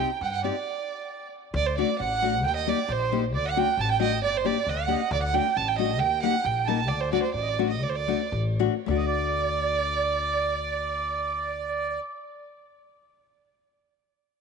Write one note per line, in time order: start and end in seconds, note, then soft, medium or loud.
0.00 0.17 G5 loud
0.00 0.21 G5 medium
0.21 0.48 G2 loud
0.21 0.26 F#5 medium
0.21 0.30 F#5 medium
0.21 0.34 G5 medium
0.31 0.43 F#5 medium
0.42 0.54 C4 medium
0.42 0.54 D#4 medium
0.42 0.55 G4 medium
0.42 1.28 D5 medium
0.42 1.29 D5 medium
1.54 1.81 D2 loud
1.54 1.75 D5 medium
1.54 1.68 D5 loud
1.66 1.77 C5 medium
1.76 1.89 A3 medium
1.76 1.89 D4 medium
1.76 1.89 F#4 medium
1.76 2.00 D5 medium
1.76 1.99 D5 medium
1.99 2.44 A1 loud
1.99 2.41 F#5 loud
1.99 2.46 F#5 medium
2.22 2.33 A3 medium
2.22 2.34 D4 medium
2.22 2.34 F#4 medium
2.43 2.71 D#2 loud
2.43 2.67 G5 loud
2.43 2.56 G5 loud
2.56 2.71 D#5 medium
2.67 2.78 A#3 medium
2.67 2.78 D#4 medium
2.67 2.78 G4 medium
2.67 2.90 D5 medium
2.67 2.93 D5 medium
2.88 3.34 A#1 loud
2.88 3.20 C5 medium
2.88 3.24 C5 loud
3.12 3.23 A#3 medium
3.12 3.23 D#4 medium
3.12 3.23 G4 medium
3.34 3.61 D2 loud
3.34 3.45 D5 loud
3.34 3.47 D5 loud
3.45 3.76 F#5 medium
3.45 3.59 F#5 loud
3.56 3.68 A3 medium
3.56 3.68 D4 medium
3.56 3.68 F#4 medium
3.56 3.82 G5 loud
3.77 4.22 A1 loud
3.77 3.90 A5 medium
3.77 3.90 A5 loud
3.89 4.21 G5 loud
3.89 4.01 G5 loud
4.00 4.11 A3 medium
4.00 4.11 D4 medium
4.00 4.12 F#4 medium
4.00 4.22 D#5 loud
4.22 4.49 G1 loud
4.22 4.32 D5 medium
4.22 4.39 D5 loud
4.34 4.44 C5 medium
4.34 4.47 C5 loud
4.34 4.36 D5 medium
4.44 4.56 A#3 medium
4.44 4.56 D4 medium
4.44 4.56 G4 medium
4.44 4.68 D5 medium
4.44 4.70 D5 loud
4.67 4.94 D2 loud
4.67 4.91 F#5 medium
4.67 5.12 F#5 loud
4.87 5.00 A#3 medium
4.87 5.00 D4 medium
4.87 5.00 G4 medium
4.87 5.11 D#5 medium
5.11 5.38 D2 loud
5.11 5.24 D5 medium
5.11 5.22 D5 loud
5.20 5.33 F#5 medium
5.20 5.36 F#5 loud
5.31 5.45 A3 medium
5.31 5.45 D4 medium
5.31 5.45 F#4 medium
5.31 5.56 G5 medium
5.31 5.59 G5 loud
5.55 6.00 A1 medium
5.55 5.67 A5 medium
5.55 5.69 A5 loud
5.68 5.78 G5 medium
5.68 5.78 G5 loud
5.78 5.90 A3 medium
5.78 5.90 D4 medium
5.78 5.90 F#4 medium
5.78 5.99 D#5 medium
5.78 6.01 D#5 medium
5.99 6.27 D#2 loud
5.99 6.22 G5 loud
5.99 6.24 G5 medium
6.22 6.34 A#3 medium
6.22 6.34 D#4 medium
6.22 6.34 G4 medium
6.22 6.43 F#5 medium
6.22 6.47 F#5 loud
6.43 6.88 A#1 medium
6.43 6.67 G5 medium
6.43 6.69 G5 medium
6.65 6.79 A#3 medium
6.65 6.79 D#4 medium
6.65 6.89 A5 medium
6.65 6.90 A5 medium
6.69 6.79 A#4 medium
6.88 7.16 D2 loud
6.88 7.10 D5 medium
6.88 7.02 D5 medium
7.01 7.12 C5 medium
7.12 7.23 A3 medium
7.12 7.24 D4 medium
7.12 7.24 F#4 medium
7.12 7.33 D5 medium
7.12 7.22 D5 loud
7.23 7.34 C5 medium
7.34 7.82 A1 medium
7.34 7.67 D5 medium
7.34 7.42 D5 medium
7.42 7.49 D#5 medium
7.47 7.70 D5 medium
7.59 7.70 A3 medium
7.59 7.70 D4 medium
7.59 7.70 F#4 medium
7.70 7.76 D#5 medium
7.70 7.85 D#5 medium
7.77 7.81 D#5 medium
7.82 8.12 D2 loud
7.82 7.91 D5 medium
7.82 7.96 D5 medium
7.89 7.97 C5 medium
7.95 8.32 D5 medium
7.95 8.30 D5 medium
8.08 8.20 A3 medium
8.08 8.20 D4 medium
8.08 8.20 F#4 medium
8.32 8.66 A1 loud
8.59 8.73 A3 medium
8.59 8.73 D4 medium
8.59 8.74 F#4 medium
8.86 11.97 D2 loud
8.86 11.95 A3 medium
8.86 11.98 D4 medium
8.86 11.98 D5 medium
8.86 8.97 D5 loud
8.90 11.99 F#4 medium
8.97 9.06 D#5 medium
9.07 12.00 D5 loud